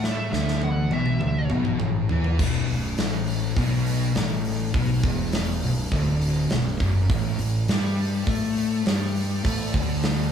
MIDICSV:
0, 0, Header, 1, 5, 480
1, 0, Start_track
1, 0, Key_signature, 2, "minor"
1, 0, Tempo, 588813
1, 21, Time_signature, 4, 2, 24, 8
1, 8412, End_track
2, 0, Start_track
2, 0, Title_t, "Lead electric guitar"
2, 0, Program_c, 0, 29
2, 30, Note_on_c, 0, 76, 96
2, 254, Note_off_c, 0, 76, 0
2, 264, Note_on_c, 0, 76, 102
2, 497, Note_off_c, 0, 76, 0
2, 519, Note_on_c, 0, 78, 88
2, 745, Note_off_c, 0, 78, 0
2, 761, Note_on_c, 0, 76, 90
2, 1219, Note_off_c, 0, 76, 0
2, 8412, End_track
3, 0, Start_track
3, 0, Title_t, "Distorted electric guitar"
3, 0, Program_c, 1, 30
3, 0, Note_on_c, 1, 57, 107
3, 254, Note_off_c, 1, 57, 0
3, 259, Note_on_c, 1, 50, 121
3, 735, Note_off_c, 1, 50, 0
3, 742, Note_on_c, 1, 47, 99
3, 977, Note_off_c, 1, 47, 0
3, 983, Note_on_c, 1, 50, 106
3, 1217, Note_off_c, 1, 50, 0
3, 1225, Note_on_c, 1, 47, 104
3, 1459, Note_off_c, 1, 47, 0
3, 1463, Note_on_c, 1, 45, 106
3, 1698, Note_off_c, 1, 45, 0
3, 1709, Note_on_c, 1, 52, 98
3, 1941, Note_off_c, 1, 52, 0
3, 1954, Note_on_c, 1, 35, 112
3, 2180, Note_off_c, 1, 35, 0
3, 2190, Note_on_c, 1, 35, 81
3, 2381, Note_off_c, 1, 35, 0
3, 2424, Note_on_c, 1, 45, 96
3, 2899, Note_off_c, 1, 45, 0
3, 2902, Note_on_c, 1, 47, 102
3, 3377, Note_off_c, 1, 47, 0
3, 3393, Note_on_c, 1, 45, 94
3, 3862, Note_off_c, 1, 45, 0
3, 3870, Note_on_c, 1, 47, 117
3, 4101, Note_off_c, 1, 47, 0
3, 4101, Note_on_c, 1, 40, 118
3, 4576, Note_off_c, 1, 40, 0
3, 4586, Note_on_c, 1, 35, 70
3, 4778, Note_off_c, 1, 35, 0
3, 4823, Note_on_c, 1, 38, 116
3, 5297, Note_off_c, 1, 38, 0
3, 5301, Note_on_c, 1, 35, 80
3, 5495, Note_off_c, 1, 35, 0
3, 5548, Note_on_c, 1, 42, 116
3, 5779, Note_off_c, 1, 42, 0
3, 5787, Note_on_c, 1, 45, 100
3, 6012, Note_off_c, 1, 45, 0
3, 6021, Note_on_c, 1, 45, 81
3, 6214, Note_off_c, 1, 45, 0
3, 6269, Note_on_c, 1, 55, 107
3, 6739, Note_off_c, 1, 55, 0
3, 6747, Note_on_c, 1, 57, 114
3, 7217, Note_off_c, 1, 57, 0
3, 7223, Note_on_c, 1, 55, 111
3, 7694, Note_off_c, 1, 55, 0
3, 7697, Note_on_c, 1, 57, 111
3, 7932, Note_off_c, 1, 57, 0
3, 7942, Note_on_c, 1, 50, 119
3, 8412, Note_off_c, 1, 50, 0
3, 8412, End_track
4, 0, Start_track
4, 0, Title_t, "Fingered electric bass"
4, 0, Program_c, 2, 33
4, 0, Note_on_c, 2, 45, 97
4, 232, Note_off_c, 2, 45, 0
4, 266, Note_on_c, 2, 38, 105
4, 713, Note_off_c, 2, 38, 0
4, 745, Note_on_c, 2, 35, 91
4, 968, Note_off_c, 2, 35, 0
4, 989, Note_on_c, 2, 38, 106
4, 1211, Note_off_c, 2, 38, 0
4, 1232, Note_on_c, 2, 35, 113
4, 1452, Note_off_c, 2, 35, 0
4, 1475, Note_on_c, 2, 33, 98
4, 1694, Note_off_c, 2, 33, 0
4, 1717, Note_on_c, 2, 40, 97
4, 1935, Note_off_c, 2, 40, 0
4, 1948, Note_on_c, 2, 23, 93
4, 2171, Note_off_c, 2, 23, 0
4, 2198, Note_on_c, 2, 23, 82
4, 2416, Note_off_c, 2, 23, 0
4, 2427, Note_on_c, 2, 33, 91
4, 2874, Note_off_c, 2, 33, 0
4, 2910, Note_on_c, 2, 35, 112
4, 3356, Note_off_c, 2, 35, 0
4, 3387, Note_on_c, 2, 33, 95
4, 3834, Note_off_c, 2, 33, 0
4, 3868, Note_on_c, 2, 35, 95
4, 4090, Note_off_c, 2, 35, 0
4, 4107, Note_on_c, 2, 28, 100
4, 4554, Note_off_c, 2, 28, 0
4, 4593, Note_on_c, 2, 23, 94
4, 4813, Note_off_c, 2, 23, 0
4, 4822, Note_on_c, 2, 26, 100
4, 5271, Note_off_c, 2, 26, 0
4, 5308, Note_on_c, 2, 23, 82
4, 5529, Note_off_c, 2, 23, 0
4, 5547, Note_on_c, 2, 30, 92
4, 5769, Note_off_c, 2, 30, 0
4, 5788, Note_on_c, 2, 33, 109
4, 6009, Note_off_c, 2, 33, 0
4, 6026, Note_on_c, 2, 33, 85
4, 6248, Note_off_c, 2, 33, 0
4, 6267, Note_on_c, 2, 43, 95
4, 6712, Note_off_c, 2, 43, 0
4, 6744, Note_on_c, 2, 45, 106
4, 7190, Note_off_c, 2, 45, 0
4, 7225, Note_on_c, 2, 43, 97
4, 7671, Note_off_c, 2, 43, 0
4, 7704, Note_on_c, 2, 45, 98
4, 7926, Note_off_c, 2, 45, 0
4, 7940, Note_on_c, 2, 38, 104
4, 8388, Note_off_c, 2, 38, 0
4, 8412, End_track
5, 0, Start_track
5, 0, Title_t, "Drums"
5, 32, Note_on_c, 9, 38, 77
5, 113, Note_off_c, 9, 38, 0
5, 269, Note_on_c, 9, 38, 74
5, 351, Note_off_c, 9, 38, 0
5, 390, Note_on_c, 9, 38, 63
5, 472, Note_off_c, 9, 38, 0
5, 502, Note_on_c, 9, 48, 86
5, 583, Note_off_c, 9, 48, 0
5, 742, Note_on_c, 9, 48, 94
5, 823, Note_off_c, 9, 48, 0
5, 862, Note_on_c, 9, 47, 76
5, 943, Note_off_c, 9, 47, 0
5, 984, Note_on_c, 9, 47, 93
5, 1065, Note_off_c, 9, 47, 0
5, 1220, Note_on_c, 9, 45, 94
5, 1302, Note_off_c, 9, 45, 0
5, 1344, Note_on_c, 9, 45, 85
5, 1426, Note_off_c, 9, 45, 0
5, 1464, Note_on_c, 9, 45, 106
5, 1546, Note_off_c, 9, 45, 0
5, 1707, Note_on_c, 9, 43, 113
5, 1788, Note_off_c, 9, 43, 0
5, 1829, Note_on_c, 9, 43, 104
5, 1910, Note_off_c, 9, 43, 0
5, 1950, Note_on_c, 9, 36, 116
5, 1950, Note_on_c, 9, 49, 127
5, 2032, Note_off_c, 9, 36, 0
5, 2032, Note_off_c, 9, 49, 0
5, 2189, Note_on_c, 9, 46, 74
5, 2271, Note_off_c, 9, 46, 0
5, 2427, Note_on_c, 9, 46, 96
5, 2435, Note_on_c, 9, 38, 113
5, 2508, Note_off_c, 9, 46, 0
5, 2516, Note_off_c, 9, 38, 0
5, 2663, Note_on_c, 9, 46, 72
5, 2745, Note_off_c, 9, 46, 0
5, 2906, Note_on_c, 9, 46, 91
5, 2907, Note_on_c, 9, 36, 107
5, 2987, Note_off_c, 9, 46, 0
5, 2988, Note_off_c, 9, 36, 0
5, 3151, Note_on_c, 9, 46, 68
5, 3232, Note_off_c, 9, 46, 0
5, 3383, Note_on_c, 9, 46, 89
5, 3391, Note_on_c, 9, 38, 114
5, 3464, Note_off_c, 9, 46, 0
5, 3472, Note_off_c, 9, 38, 0
5, 3627, Note_on_c, 9, 46, 69
5, 3709, Note_off_c, 9, 46, 0
5, 3866, Note_on_c, 9, 36, 126
5, 3867, Note_on_c, 9, 46, 102
5, 3947, Note_off_c, 9, 36, 0
5, 3948, Note_off_c, 9, 46, 0
5, 4105, Note_on_c, 9, 36, 127
5, 4106, Note_on_c, 9, 46, 77
5, 4186, Note_off_c, 9, 36, 0
5, 4187, Note_off_c, 9, 46, 0
5, 4340, Note_on_c, 9, 46, 104
5, 4348, Note_on_c, 9, 38, 118
5, 4421, Note_off_c, 9, 46, 0
5, 4430, Note_off_c, 9, 38, 0
5, 4585, Note_on_c, 9, 46, 71
5, 4666, Note_off_c, 9, 46, 0
5, 4822, Note_on_c, 9, 46, 80
5, 4824, Note_on_c, 9, 36, 111
5, 4903, Note_off_c, 9, 46, 0
5, 4906, Note_off_c, 9, 36, 0
5, 5066, Note_on_c, 9, 46, 59
5, 5147, Note_off_c, 9, 46, 0
5, 5297, Note_on_c, 9, 46, 84
5, 5305, Note_on_c, 9, 38, 120
5, 5378, Note_off_c, 9, 46, 0
5, 5387, Note_off_c, 9, 38, 0
5, 5545, Note_on_c, 9, 36, 116
5, 5545, Note_on_c, 9, 46, 58
5, 5627, Note_off_c, 9, 36, 0
5, 5627, Note_off_c, 9, 46, 0
5, 5784, Note_on_c, 9, 46, 96
5, 5786, Note_on_c, 9, 36, 125
5, 5866, Note_off_c, 9, 46, 0
5, 5867, Note_off_c, 9, 36, 0
5, 6022, Note_on_c, 9, 46, 69
5, 6104, Note_off_c, 9, 46, 0
5, 6264, Note_on_c, 9, 46, 96
5, 6272, Note_on_c, 9, 38, 126
5, 6345, Note_off_c, 9, 46, 0
5, 6353, Note_off_c, 9, 38, 0
5, 6502, Note_on_c, 9, 46, 71
5, 6584, Note_off_c, 9, 46, 0
5, 6740, Note_on_c, 9, 46, 90
5, 6742, Note_on_c, 9, 36, 111
5, 6821, Note_off_c, 9, 46, 0
5, 6823, Note_off_c, 9, 36, 0
5, 6983, Note_on_c, 9, 46, 63
5, 7065, Note_off_c, 9, 46, 0
5, 7222, Note_on_c, 9, 46, 96
5, 7230, Note_on_c, 9, 38, 116
5, 7303, Note_off_c, 9, 46, 0
5, 7312, Note_off_c, 9, 38, 0
5, 7465, Note_on_c, 9, 46, 69
5, 7546, Note_off_c, 9, 46, 0
5, 7702, Note_on_c, 9, 36, 118
5, 7702, Note_on_c, 9, 46, 113
5, 7783, Note_off_c, 9, 36, 0
5, 7784, Note_off_c, 9, 46, 0
5, 7940, Note_on_c, 9, 36, 126
5, 7940, Note_on_c, 9, 46, 80
5, 8021, Note_off_c, 9, 46, 0
5, 8022, Note_off_c, 9, 36, 0
5, 8175, Note_on_c, 9, 46, 103
5, 8183, Note_on_c, 9, 38, 127
5, 8256, Note_off_c, 9, 46, 0
5, 8264, Note_off_c, 9, 38, 0
5, 8412, End_track
0, 0, End_of_file